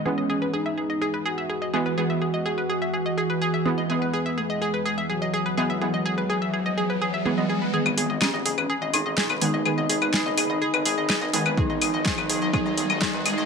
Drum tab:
HH |----------------|----------------|----------------|----------------|
CL |----------------|----------------|----------------|----------------|
SD |----------------|----------------|----------------|----------------|
BD |----------------|----------------|----------------|----------------|

HH |--o---o---o---o-|--o---o---o---o-|--o---o---o---o-|
CL |-x--x--x--x--x--|x--x--x--x--x--x|--x--x--x--x--x-|
SD |----o-------o---|----o-------o---|----o-------o---|
BD |----------------|----------------|o---o---o---o---|